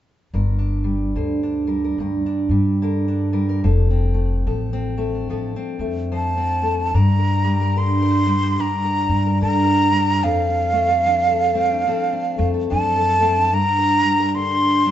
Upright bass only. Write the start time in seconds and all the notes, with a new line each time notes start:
0.34 G1
1.15 D2
1.98 D2
2.49 G2
3.64 F1
4.47 A1
5.29 A1
5.79 F2
6.94 G2
9.09 G2
9.41 G2
10.24 F2
12.39 F2
12.71 F#2
13.54 G2